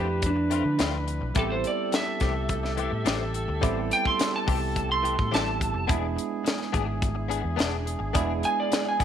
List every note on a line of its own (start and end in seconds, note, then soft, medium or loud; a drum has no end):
0.00 0.61 F2 medium
0.00 1.31 F3 medium
0.00 1.32 A3 medium
0.00 1.32 C4 medium
0.00 1.33 D4 medium
0.00 1.32 E4 medium
0.00 0.23 G4 medium
0.00 1.34 B4 medium
0.08 muted clean electric guitar stroke soft
0.22 kick medium
0.22 closed hi-hat medium
0.26 0.79 D4 loud
0.36 muted clean electric guitar stroke soft
0.50 0.65 A3 medium
0.50 0.64 C4 medium
0.50 0.63 F4 medium
0.50 closed hi-hat medium
0.64 0.78 D3 medium
0.64 muted clean electric guitar stroke soft
0.78 1.20 D2 medium
0.78 0.96 A3 medium
0.78 0.96 C4 medium
0.78 0.96 F4 medium
0.78 snare medium
0.78 closed hi-hat medium
1.07 muted clean electric guitar stroke soft
1.07 closed hi-hat medium
1.21 1.35 B1 medium
1.21 muted clean electric guitar stroke soft
1.34 1.63 A1 medium
1.34 1.53 E3 medium
1.34 3.58 G3 medium
1.34 1.53 A3 medium
1.34 3.58 B3 medium
1.34 3.58 C4 medium
1.34 1.53 C4 medium
1.34 3.59 E4 medium
1.34 5.85 G4 medium
1.34 1.53 G4 medium
1.34 5.85 A4 medium
1.34 kick loud
1.34 closed hi-hat medium
1.39 1.51 A4 loud
1.52 1.65 C5 medium
1.64 1.93 D5 loud
1.64 muted clean electric guitar stroke soft
1.64 closed hi-hat medium
1.92 3.60 E5 medium
1.92 muted clean electric guitar stroke soft
1.92 snare loud
1.92 closed hi-hat medium
2.07 muted clean electric guitar stroke soft
2.20 2.88 C2 medium
2.20 2.35 E3 medium
2.20 2.35 A3 medium
2.20 2.34 C4 medium
2.20 2.34 G4 medium
2.20 kick medium
2.20 snare soft
2.20 closed hi-hat medium
2.35 muted clean electric guitar stroke soft
2.49 kick medium
2.49 closed hi-hat medium
2.63 muted clean electric guitar stroke soft
2.63 snare soft
2.77 2.92 E3 medium
2.77 2.91 A3 medium
2.77 2.91 C4 medium
2.77 2.91 G4 medium
2.77 closed hi-hat medium
2.92 3.05 A2 medium
2.92 muted clean electric guitar stroke soft
3.05 3.46 A1 medium
3.05 3.22 E3 loud
3.05 3.23 A3 medium
3.05 3.23 C4 medium
3.05 3.23 G4 loud
3.05 snare loud
3.05 closed hi-hat medium
3.34 muted clean electric guitar stroke soft
3.34 closed hi-hat medium
3.48 3.62 D2 medium
3.48 muted clean electric guitar stroke soft
3.61 3.89 A1 medium
3.61 3.79 E3 medium
3.61 5.28 G3 medium
3.61 3.79 A3 medium
3.61 5.29 B3 medium
3.61 3.79 C4 loud
3.61 5.29 C4 medium
3.61 5.29 E4 medium
3.61 3.80 G4 medium
3.61 kick loud
3.61 closed hi-hat medium
3.90 4.06 G5 medium
3.90 muted clean electric guitar stroke soft
3.90 closed hi-hat medium
4.05 4.33 C6 medium
4.05 kick medium
4.18 muted clean electric guitar stroke soft
4.18 snare loud
4.18 closed hi-hat loud
4.33 4.89 A5 medium
4.33 muted clean electric guitar stroke soft
4.47 5.15 C2 medium
4.47 4.61 E3 medium
4.47 4.60 A3 medium
4.47 4.60 C4 medium
4.47 4.59 G4 medium
4.47 kick medium
4.47 open hi-hat medium
4.61 muted clean electric guitar stroke soft
4.76 kick medium
4.76 closed hi-hat medium
4.89 5.32 C6 medium
4.89 muted clean electric guitar stroke soft
5.03 5.18 E3 medium
5.03 5.16 A3 medium
5.03 5.16 C4 medium
5.03 5.16 G4 medium
5.03 closed hi-hat medium
5.17 5.32 A2 medium
5.17 muted clean electric guitar stroke soft
5.17 kick medium
5.31 5.73 A1 medium
5.31 5.49 E3 medium
5.31 5.89 G3 soft
5.31 5.49 A3 medium
5.31 5.88 B3 soft
5.31 5.49 C4 medium
5.31 5.89 C4 soft
5.31 5.89 E4 medium
5.31 5.49 G4 medium
5.31 5.88 A5 loud
5.31 snare loud
5.31 closed hi-hat medium
5.60 muted clean electric guitar stroke soft
5.60 kick medium
5.60 closed hi-hat medium
5.74 5.88 F1 medium
5.74 muted clean electric guitar stroke soft
5.87 6.16 E1 medium
5.87 8.11 G#3 medium
5.87 6.05 B3 medium
5.87 8.11 B3 medium
5.87 6.05 D4 medium
5.87 8.11 D4 medium
5.87 9.04 D4 medium
5.87 9.04 E4 medium
5.87 8.12 E4 medium
5.87 6.06 G#4 medium
5.87 9.04 G#4 medium
5.87 kick loud
5.87 closed hi-hat medium
6.16 muted clean electric guitar stroke soft
6.16 closed hi-hat medium
6.44 muted clean electric guitar stroke soft
6.44 closed hi-hat medium
6.48 snare loud
6.59 muted clean electric guitar stroke soft
6.59 snare soft
6.72 7.41 G#1 medium
6.72 6.87 B3 medium
6.72 6.87 D4 medium
6.72 6.86 G#4 medium
6.72 kick medium
6.72 closed hi-hat medium
6.87 muted clean electric guitar stroke soft
7.02 kick medium
7.02 closed hi-hat medium
7.15 muted clean electric guitar stroke soft
7.28 7.44 B3 medium
7.28 7.42 D4 medium
7.28 7.41 G#4 medium
7.28 closed hi-hat medium
7.42 7.58 E2 medium
7.42 muted clean electric guitar stroke soft
7.56 7.99 E1 medium
7.56 7.74 B3 medium
7.56 7.75 D4 loud
7.56 7.75 G#4 loud
7.56 closed hi-hat medium
7.60 snare medium
7.85 muted clean electric guitar stroke soft
7.85 closed hi-hat medium
7.99 8.14 G#1 medium
7.99 muted clean electric guitar stroke medium
8.13 8.42 E1 loud
8.13 9.04 G#3 medium
8.13 8.31 B3 medium
8.13 9.04 B3 medium
8.13 8.32 D4 medium
8.13 9.04 D4 medium
8.13 9.04 E4 medium
8.13 8.32 G#4 medium
8.13 kick loud
8.13 closed hi-hat medium
8.42 8.58 G#5 medium
8.42 muted clean electric guitar stroke soft
8.42 closed hi-hat medium
8.60 8.86 D5 medium
8.71 muted clean electric guitar stroke soft
8.71 snare loud
8.71 closed hi-hat medium
8.85 9.04 G#5 medium
8.85 muted clean electric guitar stroke soft
9.00 9.04 G#1 medium
9.00 9.04 B3 medium
9.00 9.04 D4 medium
9.00 9.04 G#4 medium
9.00 kick medium
9.00 closed hi-hat medium